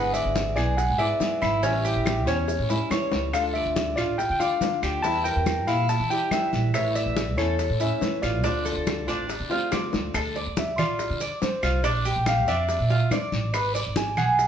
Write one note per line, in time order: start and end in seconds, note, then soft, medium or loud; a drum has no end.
0.00 0.24 G#1 loud
0.00 0.55 D3 medium
0.00 0.56 G#3 medium
0.00 0.56 B3 medium
0.00 0.56 E4 medium
0.00 0.55 G#4 medium
0.00 0.13 B4 medium
0.00 0.12 F#5 loud
0.14 0.55 D5 medium
0.14 0.58 E5 medium
0.14 high bongo soft
0.14 high conga soft
0.14 maracas medium
0.25 0.57 G#1 medium
0.35 high bongo medium
0.35 high conga loud
0.35 short guiro medium
0.35 maracas medium
0.56 0.87 B1 medium
0.56 0.76 G#3 soft
0.56 0.76 B3 medium
0.56 0.77 E4 medium
0.56 0.77 G#4 medium
0.56 0.98 G#4 medium
0.56 0.76 D5 medium
0.56 high bongo soft
0.56 high conga soft
0.56 short guiro medium
0.56 claves medium
0.56 maracas soft
0.77 0.98 F#5 medium
0.77 muted nylon-string guitar stroke soft
0.77 high bongo medium
0.77 high conga soft
0.77 long guiro medium
0.77 maracas medium
0.90 1.09 G#2 medium
0.98 1.19 G#3 medium
0.98 1.19 B3 medium
0.98 1.20 E4 medium
0.98 1.19 G#4 medium
0.98 1.41 D5 medium
0.98 1.40 E5 medium
0.98 high bongo soft
0.98 high conga soft
1.20 1.62 G#3 soft
1.20 1.62 B3 medium
1.20 1.63 E4 medium
1.20 1.63 G#4 medium
1.20 high bongo soft
1.20 low bongo medium
1.20 high conga medium
1.20 short guiro medium
1.20 maracas medium
1.42 1.64 G#1 medium
1.42 1.62 E4 medium
1.42 2.23 E5 medium
1.42 high conga medium
1.42 short guiro medium
1.42 claves medium
1.42 maracas soft
1.63 1.94 A1 loud
1.63 2.26 E3 medium
1.63 2.26 G3 medium
1.63 1.84 C#4 medium
1.63 2.26 C#4 medium
1.63 2.25 E4 medium
1.63 high bongo medium
1.63 high conga soft
1.63 long guiro medium
1.63 maracas medium
1.85 2.26 G4 medium
1.85 high bongo soft
1.85 high conga soft
1.85 maracas medium
1.96 2.28 A1 medium
2.06 high bongo medium
2.06 high conga loud
2.06 short guiro medium
2.06 claves medium
2.06 maracas medium
2.26 2.58 E2 medium
2.26 2.47 G3 medium
2.26 2.47 C#4 medium
2.26 2.69 C#4 medium
2.26 2.47 E4 medium
2.26 high bongo soft
2.26 high conga soft
2.26 short guiro medium
2.26 maracas soft
2.47 muted nylon-string guitar stroke medium
2.47 high bongo medium
2.47 high conga soft
2.47 long guiro medium
2.47 maracas medium
2.59 2.79 A2 medium
2.69 2.90 G3 medium
2.69 2.90 C#4 medium
2.69 2.90 E4 medium
2.69 2.91 E4 medium
2.69 low bongo medium
2.69 high conga soft
2.69 maracas medium
2.90 3.32 E3 medium
2.90 3.33 G3 medium
2.90 3.33 C#4 medium
2.90 3.33 E4 medium
2.90 3.32 C#5 medium
2.90 low bongo medium
2.90 high conga medium
2.90 short guiro medium
2.90 claves medium
2.90 maracas medium
3.12 3.34 C#2 medium
3.12 low bongo loud
3.12 short guiro medium
3.12 maracas soft
3.33 3.64 D2 loud
3.33 3.96 D3 medium
3.33 3.97 A3 medium
3.33 3.96 D4 medium
3.33 3.95 F4 medium
3.33 3.54 A4 medium
3.33 3.43 F5 medium
3.33 high bongo medium
3.33 high conga soft
3.33 long guiro medium
3.33 claves medium
3.33 maracas medium
3.54 3.97 D5 medium
3.54 3.94 E5 medium
3.54 high bongo soft
3.54 high conga soft
3.66 3.98 D2 medium
3.76 high bongo medium
3.76 high conga loud
3.76 short guiro medium
3.76 maracas medium
3.96 4.28 A1 medium
3.96 4.18 A3 soft
3.96 4.18 D4 medium
3.96 4.18 F4 medium
3.96 4.39 F4 medium
3.96 4.17 D5 medium
3.96 high bongo soft
3.96 high conga soft
3.96 short guiro medium
3.96 claves medium
3.96 maracas soft
4.18 4.30 G5 medium
4.18 muted nylon-string guitar stroke medium
4.18 high bongo medium
4.18 high conga soft
4.18 long guiro medium
4.18 maracas medium
4.30 4.50 D3 medium
4.30 4.39 G5 medium
4.40 4.60 A3 medium
4.40 4.61 D4 medium
4.40 4.60 F4 medium
4.40 4.82 D5 medium
4.40 4.80 F5 loud
4.40 high bongo soft
4.40 high conga soft
4.40 maracas medium
4.61 5.03 D3 medium
4.61 5.03 A3 soft
4.61 5.04 D4 medium
4.61 5.04 F4 medium
4.61 high bongo soft
4.61 low bongo medium
4.61 high conga medium
4.61 short guiro medium
4.61 maracas medium
4.83 5.04 D2 medium
4.83 5.03 G4 medium
4.83 short guiro medium
4.83 claves medium
4.83 maracas soft
5.02 5.34 E2 loud
5.02 5.88 E3 medium
5.02 5.67 G3 medium
5.02 5.25 E4 medium
5.02 5.67 E4 medium
5.02 5.23 A5 loud
5.02 high bongo medium
5.02 high conga soft
5.02 long guiro medium
5.02 maracas medium
5.24 5.67 A#4 medium
5.24 5.69 G5 medium
5.24 high bongo soft
5.24 high conga soft
5.24 maracas medium
5.36 5.68 E2 medium
5.46 high bongo medium
5.46 high conga loud
5.46 short guiro medium
5.46 claves medium
5.46 maracas medium
5.67 5.98 A#2 medium
5.67 5.88 G3 medium
5.67 5.88 E4 medium
5.67 6.09 E4 medium
5.67 5.87 F5 medium
5.67 high bongo soft
5.67 high conga soft
5.67 short guiro medium
5.67 maracas soft
5.89 6.09 A5 loud
5.89 muted nylon-string guitar stroke medium
5.89 high bongo medium
5.89 high conga soft
5.89 long guiro medium
5.89 maracas medium
6.00 6.20 E3 medium
6.10 6.31 G3 medium
6.10 6.31 E4 medium
6.10 6.31 G4 medium
6.10 6.50 G5 medium
6.10 high bongo soft
6.10 high conga soft
6.10 maracas medium
6.31 6.72 E3 medium
6.31 6.74 G3 medium
6.31 6.74 E4 medium
6.31 6.73 E5 medium
6.31 high bongo soft
6.31 low bongo medium
6.31 high conga medium
6.31 short guiro medium
6.31 claves medium
6.31 maracas medium
6.53 6.74 A#1 medium
6.53 high conga medium
6.53 short guiro medium
6.53 maracas soft
6.74 7.05 A1 loud
6.74 7.37 E3 medium
6.74 7.38 A3 medium
6.74 7.36 E4 medium
6.74 6.95 C#5 medium
6.74 6.94 E5 medium
6.74 high bongo medium
6.74 high conga soft
6.74 long guiro medium
6.74 claves medium
6.74 maracas medium
6.95 7.35 D5 medium
6.95 7.37 E5 medium
6.95 high bongo soft
6.95 high conga soft
6.95 maracas medium
7.06 7.38 A1 medium
7.16 high bongo medium
7.16 high conga loud
7.16 short guiro medium
7.16 maracas medium
7.37 7.69 E2 medium
7.37 7.58 A3 medium
7.37 7.58 C#4 medium
7.37 7.58 E4 medium
7.37 7.79 A4 medium
7.37 8.26 C#5 medium
7.37 high bongo soft
7.37 high conga soft
7.37 short guiro medium
7.37 claves medium
7.37 maracas soft
7.59 muted nylon-string guitar stroke medium
7.59 high bongo medium
7.59 high conga soft
7.59 long guiro medium
7.59 maracas medium
7.70 7.90 A2 medium
7.80 8.01 A3 medium
7.80 8.01 C#4 medium
7.80 8.01 E4 medium
7.80 8.22 E5 medium
7.80 high bongo soft
7.80 high conga soft
7.80 maracas medium
8.01 8.43 E3 soft
8.01 8.43 A3 medium
8.01 8.44 C#4 soft
8.01 8.44 E4 medium
8.01 high bongo soft
8.01 low bongo medium
8.01 high conga medium
8.01 short guiro medium
8.01 maracas medium
8.22 8.44 A1 medium
8.22 8.43 F4 medium
8.22 9.89 D5 medium
8.22 short guiro medium
8.22 claves medium
8.22 maracas soft
8.43 8.75 D2 loud
8.43 9.07 D3 medium
8.43 9.07 A3 medium
8.43 9.07 C4 medium
8.43 8.65 D4 medium
8.43 9.06 F4 medium
8.43 high bongo medium
8.43 high conga soft
8.43 long guiro medium
8.43 maracas medium
8.65 9.07 A4 medium
8.65 high bongo soft
8.65 high conga soft
8.65 maracas medium
8.77 9.08 D2 medium
8.87 high bongo medium
8.87 high conga loud
8.87 short guiro medium
8.87 claves medium
8.87 maracas medium
9.07 9.38 A1 medium
9.07 9.27 A3 medium
9.07 9.27 C4 medium
9.07 9.49 D4 medium
9.07 9.28 F4 medium
9.07 high bongo soft
9.07 high conga soft
9.07 short guiro medium
9.07 maracas soft
9.28 muted nylon-string guitar stroke medium
9.28 high bongo medium
9.28 high conga soft
9.28 long guiro medium
9.28 maracas medium
9.40 9.60 D3 medium
9.49 9.70 A3 medium
9.49 9.71 C4 medium
9.49 9.70 F4 medium
9.49 9.71 F4 medium
9.49 high bongo medium
9.49 high conga soft
9.71 10.13 D3 soft
9.71 10.13 A3 soft
9.71 10.14 C4 medium
9.71 10.14 F4 medium
9.71 10.13 D5 medium
9.71 high bongo loud
9.71 high conga medium
9.71 short guiro medium
9.71 claves medium
9.71 maracas medium
9.93 10.14 D2 medium
9.93 low bongo medium
9.93 high conga medium
9.93 short guiro medium
9.93 maracas soft
10.14 10.45 D2 loud
10.14 10.35 A4 medium
10.14 high bongo medium
10.14 high conga soft
10.14 long guiro medium
10.14 claves medium
10.14 maracas medium
10.36 10.77 D5 medium
10.36 high bongo soft
10.36 high conga soft
10.47 10.79 D2 medium
10.57 10.79 E5 medium
10.57 high bongo medium
10.57 high conga loud
10.57 short guiro medium
10.57 maracas medium
10.78 11.09 A1 medium
10.78 11.19 F4 medium
10.78 11.38 D5 medium
10.78 high bongo soft
10.78 high conga soft
10.78 low conga medium
10.78 short guiro medium
10.78 claves medium
10.78 maracas soft
10.99 high bongo medium
10.99 high conga soft
10.99 long guiro medium
10.99 maracas medium
11.10 11.30 D3 medium
11.20 11.62 D5 medium
11.20 high bongo soft
11.20 high conga soft
11.20 maracas medium
11.42 11.83 C5 medium
11.42 high bongo soft
11.42 low bongo medium
11.42 high conga medium
11.42 short guiro medium
11.42 maracas medium
11.63 11.84 C2 medium
11.63 11.84 F4 medium
11.63 short guiro medium
11.63 claves medium
11.63 maracas soft
11.84 12.14 A#1 loud
11.84 12.05 D4 medium
11.84 high bongo medium
11.84 high conga soft
11.84 long guiro medium
11.84 maracas medium
12.05 12.47 G4 medium
12.05 high bongo soft
12.05 high conga soft
12.05 maracas medium
12.16 12.48 A#1 medium
12.26 12.48 F5 loud
12.26 high bongo medium
12.26 high conga loud
12.26 short guiro medium
12.26 claves medium
12.26 maracas medium
12.48 12.78 F2 medium
12.48 12.89 D4 medium
12.48 13.08 E5 medium
12.48 high bongo soft
12.48 high conga soft
12.48 short guiro medium
12.48 maracas soft
12.69 high bongo medium
12.69 high conga soft
12.69 long guiro medium
12.69 maracas medium
12.80 13.00 A#2 medium
12.90 13.11 F4 medium
12.90 high bongo soft
12.90 high conga soft
13.11 13.53 D5 medium
13.11 13.52 D5 medium
13.11 high bongo soft
13.11 low bongo medium
13.11 high conga medium
13.11 short guiro medium
13.11 claves medium
13.11 maracas medium
13.32 13.54 A1 medium
13.32 high conga medium
13.32 short guiro medium
13.32 maracas soft
13.54 13.85 G#1 loud
13.54 13.74 B4 medium
13.54 high bongo medium
13.54 high conga soft
13.54 long guiro medium
13.54 claves medium
13.54 maracas medium
13.75 14.16 D5 medium
13.75 high bongo soft
13.75 high conga soft
13.75 maracas medium
13.86 14.18 G#1 medium
13.96 14.18 G#5 medium
13.96 high bongo medium
13.96 high conga loud
13.96 short guiro medium
13.96 maracas medium
14.17 14.47 B1 medium
14.17 14.47 G#4 medium
14.17 14.47 F#5 loud
14.17 high bongo soft
14.17 high conga soft
14.17 low conga medium
14.17 short guiro medium
14.17 claves medium
14.17 maracas soft
14.39 high bongo medium
14.39 high conga soft
14.39 long guiro medium
14.39 maracas medium